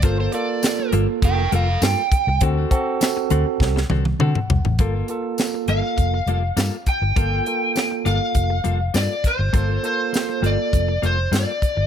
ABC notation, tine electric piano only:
X:1
M:4/4
L:1/8
Q:1/4=101
K:Gm
V:1 name="Tine electric piano"
[B,FA] [B,FA]4 z3 | [C^FA] [CFA]4 z ^f2 | [B,FA] [B,FA]4 z3 | [B,FA] [B,FA]4 z3 |
[B,FA] [B,FA]4 z3 |]